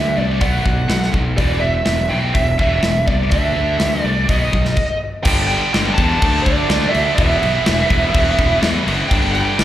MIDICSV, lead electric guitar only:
0, 0, Header, 1, 2, 480
1, 0, Start_track
1, 0, Key_signature, 1, "minor"
1, 0, Tempo, 482703
1, 1378, Time_signature, 4, 2, 24, 8
1, 9589, End_track
2, 0, Start_track
2, 0, Title_t, "Lead electric guitar"
2, 0, Program_c, 0, 29
2, 0, Note_on_c, 0, 76, 89
2, 131, Note_off_c, 0, 76, 0
2, 171, Note_on_c, 0, 74, 69
2, 396, Note_off_c, 0, 74, 0
2, 410, Note_on_c, 0, 78, 87
2, 1095, Note_off_c, 0, 78, 0
2, 1363, Note_on_c, 0, 74, 95
2, 1589, Note_off_c, 0, 74, 0
2, 1593, Note_on_c, 0, 76, 93
2, 2082, Note_on_c, 0, 79, 83
2, 2102, Note_off_c, 0, 76, 0
2, 2327, Note_on_c, 0, 76, 83
2, 2339, Note_off_c, 0, 79, 0
2, 2561, Note_off_c, 0, 76, 0
2, 2573, Note_on_c, 0, 76, 91
2, 3040, Note_off_c, 0, 76, 0
2, 3044, Note_on_c, 0, 74, 70
2, 3288, Note_off_c, 0, 74, 0
2, 3292, Note_on_c, 0, 76, 94
2, 3998, Note_off_c, 0, 76, 0
2, 3998, Note_on_c, 0, 74, 94
2, 4269, Note_off_c, 0, 74, 0
2, 4273, Note_on_c, 0, 75, 66
2, 4949, Note_off_c, 0, 75, 0
2, 5205, Note_on_c, 0, 79, 109
2, 5433, Note_off_c, 0, 79, 0
2, 5445, Note_on_c, 0, 79, 104
2, 5899, Note_off_c, 0, 79, 0
2, 5907, Note_on_c, 0, 81, 101
2, 6387, Note_on_c, 0, 74, 98
2, 6419, Note_off_c, 0, 81, 0
2, 6860, Note_off_c, 0, 74, 0
2, 6864, Note_on_c, 0, 76, 90
2, 7104, Note_off_c, 0, 76, 0
2, 7116, Note_on_c, 0, 76, 95
2, 8524, Note_off_c, 0, 76, 0
2, 9035, Note_on_c, 0, 79, 114
2, 9254, Note_off_c, 0, 79, 0
2, 9266, Note_on_c, 0, 79, 100
2, 9589, Note_off_c, 0, 79, 0
2, 9589, End_track
0, 0, End_of_file